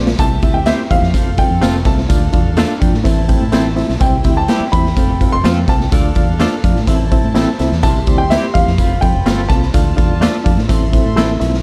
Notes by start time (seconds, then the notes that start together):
Already playing: A#1 F4 A4 C5 D5 A5
0.07 snare
0.19 C2 C4 E4 G4 C5 E5 A5, kick, closed hi-hat, tambourine
0.42 D2 C4 E4 G4 C5 E5, kick, closed hi-hat
0.54 G5
0.66 C4 E4 G4 C5 E5, snare, closed hi-hat, tambourine
0.90 E2 C4 E4 G4 C5 E5 F5, kick, closed hi-hat
1.02 F2, snare
1.14 F1 C4 F4 A4 C5 F5, kick, closed hi-hat, tambourine
1.38 C4 F4 A4 C5 F5 G5, kick, closed hi-hat
1.50 F2
1.61 F1 A3 C4 F4 A4 C5 F5, snare, closed hi-hat, tambourine
1.85 C2 C4 F4 A4 C5 E5 A5, kick, snare, closed hi-hat
1.98 snare
2.09 D2 D4 F4 A4 D5 F5, kick, closed hi-hat, tambourine
2.32 E2 D4 F4 A4 D5 F5, kick, closed hi-hat
2.57 A3 D4 F4 A4 D5 F5, snare, closed hi-hat, tambourine
2.80 F2 D4 F4 A4 D5 G5, kick, closed hi-hat
2.93 A2, snare
3.04 A1 C4 E4 A4 C5 E5 A5, kick, closed hi-hat, tambourine
3.28 C4 E4 A4 C5 G5, kick, closed hi-hat
3.41 A2
3.52 A1 A3 C4 E4 A4 C5 G5, snare, closed hi-hat, tambourine
3.76 C4 E4 A4 C5 E5, snare, open hi-hat
3.89 B1, snare
4.00 C2 C4 E4 G4 C5 E5 G5, kick, closed hi-hat, tambourine
4.24 D2 C4 E4 G4 C5 E5, kick, closed hi-hat
4.37 A5
4.48 G3 C4 E4 G4 C5 E5, snare, closed hi-hat, tambourine
4.60 muted fingered electric bass stroke
4.72 E2 C4 E4 G4 C5 E5 B5, kick, closed hi-hat
4.86 snare
4.96 F1 C4 F4 A4 C5 F5 G5, kick, closed hi-hat, tambourine
5.21 C4 F4 A4 C5 F5, kick, closed hi-hat
5.32 F1 C6
5.44 F2 A3 C4 F4 A4 C5 F5, snare, closed hi-hat, tambourine
5.68 C2 C4 F4 A4 C5 F5 A5, kick, snare, closed hi-hat
5.81 snare
5.91 D2 D4 F4 A4 D5 F5, kick, closed hi-hat, tambourine
6.15 E2 D4 F4 A4 D5 F5, kick, closed hi-hat
6.39 A3 D4 F4 A4 D5 F5, snare, closed hi-hat, tambourine
6.64 F2 D4 F4 A4 D5 F5, kick, closed hi-hat
6.75 A2, snare
6.87 A1 C4 E4 A4 C5 E5 A5, kick, closed hi-hat, tambourine
7.11 C4 E4 A4 C5 E5, kick, closed hi-hat
7.24 A2
7.35 A1 A3 C4 E4 A4 C5 E5, snare, closed hi-hat, tambourine
7.59 C2 C4 E4 A4 C5 E5, snare, closed hi-hat
7.72 E2, snare
7.83 C2 C4 E4 G4 C5 E5 A5 C6, kick, closed hi-hat, tambourine
8.07 D2 C4 E4 G4 C5 D5, kick, closed hi-hat
8.18 G5
8.30 G3 C4 E4 G4 C5 E5, snare, closed hi-hat, tambourine
8.54 E2 C4 E4 G4 C5 E5 F5, kick, closed hi-hat
8.67 F2, snare
8.78 F1 C4 F4 A4 C5 F5 B5, kick, closed hi-hat, tambourine
9.01 F2 C4 F4 A4 C5 F5 G5, kick, closed hi-hat
9.14 F1
9.26 G1 A3 C4 F4 A4 C5 F5, snare, closed hi-hat, tambourine
9.49 C2 C4 F4 A4 C5 F5 A5, kick, snare, closed hi-hat
9.63 snare
9.74 D2 D4 F4 A4 D5 F5 A5, kick, closed hi-hat, tambourine
9.96 E2 D4 F4 A4 D5 F5, kick, closed hi-hat
10.20 A3 D4 F4 A4 D5 F5, snare, closed hi-hat, tambourine
10.44 F2 D4 F4 A4 D5 F5, kick, closed hi-hat
10.57 A2, snare
10.69 A1 C4 E4 A4 C5 E5 C6, kick, closed hi-hat, tambourine
10.92 C4 E4 A4 C5 E5, kick, closed hi-hat
11.05 A2
11.16 A1 A3 C4 E4 A4 C5 E5, snare, closed hi-hat, tambourine
11.40 B1 C4 E4 A4 C5 E5, snare, closed hi-hat
11.54 snare